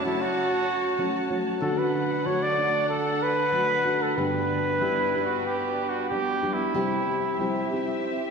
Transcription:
Already playing: violin section F#4 C#5 A5
0.04 nylon-string guitar F#3 A3 C#4 F#4, trumpet E4
0.21 trumpet F#4
0.99 nylon-string guitar F#3 A3 C#4 F#4
1.30 nylon-string guitar F#3 A3 C#4 F#4
1.61 nylon-string guitar D3 F#3 A3 D4 F#4, violin section D4 A4 F#5, trumpet A4
1.78 trumpet B4
2.26 nylon-string guitar F#3 A3 D4 F#4, trumpet C#5
2.43 trumpet D5
2.58 nylon-string guitar A3 D4 F#4
2.90 trumpet A4
3.23 trumpet B4
3.52 nylon-string guitar F#3 A3 D4 F#4
3.85 nylon-string guitar A3 D4 F#4
4.02 trumpet A4
4.17 nylon-string guitar G2 D3 G3 B3 D4 G4, violin section G3 B4, trumpet B4
4.81 nylon-string guitar G3 B3 D4 G4, trumpet E4
5.15 nylon-string guitar G3 B3 D4 G4
5.25 trumpet F#4
5.46 trumpet G4
5.89 trumpet F#4
6.09 nylon-string guitar G3 B3 D4 G4, trumpet G4
6.43 nylon-string guitar G3 B3 D4 G4
6.53 trumpet E4
6.73 nylon-string guitar C3 G3 C4 E4 G4, violin section C4 G4 E5
7.40 nylon-string guitar G3 C4 E4 G4
7.73 nylon-string guitar C4 E4 G4

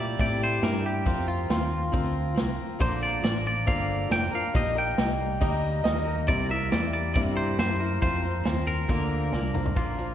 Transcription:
Already playing: fingered electric bass A#2, steel-string acoustic guitar G3 A#3 E4 G4, clean electric guitar D5
0.19 fingered electric bass A2, steel-string acoustic guitar C3 G3 E4 G4, clean electric guitar D5, kick, open hi-hat
0.43 clean electric guitar C5
0.61 fingered electric bass G2, steel-string acoustic guitar G3 A#3 E4 G4, clean electric guitar A#4, snare, open hi-hat
0.86 clean electric guitar G4
1.05 fingered electric bass F2, steel-string acoustic guitar F3 C4 F4 A#4, kick, open hi-hat
1.28 clean electric guitar F4
1.48 fingered electric bass D#2, steel-string acoustic guitar F3 C4 F4 A#4, clean electric guitar F4, snare, open hi-hat
1.92 fingered electric bass D2, steel-string acoustic guitar F3 C4 F4 A#4, kick, open hi-hat
2.34 fingered electric bass C2, steel-string acoustic guitar F3 C4 F4 A#4, snare, open hi-hat
2.59 muted fingered electric bass stroke
2.79 fingered electric bass A#1, steel-string acoustic guitar A#2 D3 F3 A#3 D4 A#4, clean electric guitar C5, kick, open hi-hat
3.03 clean electric guitar D5
3.22 fingered electric bass A1, steel-string acoustic guitar F3 A#3 D4 A#4, clean electric guitar D5, snare, open hi-hat
3.47 clean electric guitar D5
3.66 fingered electric bass G1, steel-string acoustic guitar A#2 D3 F3 A#3 D4 A#4, clean electric guitar F5, kick, open hi-hat
4.10 fingered electric bass F1, steel-string acoustic guitar F3 A#3 D4 A#4, clean electric guitar G5, snare, open hi-hat
4.31 steel-string acoustic guitar F3 A#3 D4 A#4, clean electric guitar F5, muted fingered electric bass stroke
4.53 fingered electric bass A#1, steel-string acoustic guitar D#3 G3 A#3 D#4 A#4, clean electric guitar D#5, kick, open hi-hat
4.75 steel-string acoustic guitar A#3 D#4 A#4, clean electric guitar G5
4.98 fingered electric bass C2, steel-string acoustic guitar G3 A#3 D#4 A#4, snare, open hi-hat
5.41 fingered electric bass D2, steel-string acoustic guitar G3 A#3 D#4 A#4, upright piano D#5, kick, open hi-hat
5.84 fingered electric bass D#2, steel-string acoustic guitar G3 A#3 D#4 A#4, upright piano D#5, snare, open hi-hat
6.05 steel-string acoustic guitar A#3 D#4 A#4
6.27 fingered electric bass C2, steel-string acoustic guitar C3 G3 A#3 E4 A#4, clean electric guitar D5, kick, open hi-hat
6.49 steel-string acoustic guitar A#3 E4 A#4, clean electric guitar E5
6.71 fingered electric bass E2, steel-string acoustic guitar G3 A#3 E4 A#4, clean electric guitar D5, snare, open hi-hat
6.93 clean electric guitar D5
7.14 fingered electric bass G2, steel-string acoustic guitar C3 G3 A#3 E4 A#4, clean electric guitar D5, kick, open hi-hat
7.37 clean electric guitar C5
7.58 fingered electric bass F#2, steel-string acoustic guitar G3 A#3 E4 A#4, clean electric guitar C5, snare, open hi-hat
7.80 steel-string acoustic guitar A#3 E4 A#4
8.02 fingered electric bass F2, steel-string acoustic guitar F3 C4 F4 A#4, clean electric guitar C5, kick, open hi-hat
8.22 steel-string acoustic guitar C4 F4 A#4
8.44 fingered electric bass D#2, steel-string acoustic guitar F3 C4 F4 A#4, snare, open hi-hat
8.67 clean electric guitar A#4
8.88 fingered electric bass D2, steel-string acoustic guitar A#2 D3 F3 A#3 D4 A#4, kick, open hi-hat
9.32 fingered electric bass C2, steel-string acoustic guitar F3 A#3 D4 A#4, snare
9.54 steel-string acoustic guitar F3 A#3 D4 A#4, mid tom
9.66 floor tom
9.76 fingered electric bass A#1, steel-string acoustic guitar A#2 D3 F3 A#3 D4 A#4, clean electric guitar F4, kick, closed hi-hat
9.97 steel-string acoustic guitar F3 A#3 D4 A#4, closed hi-hat

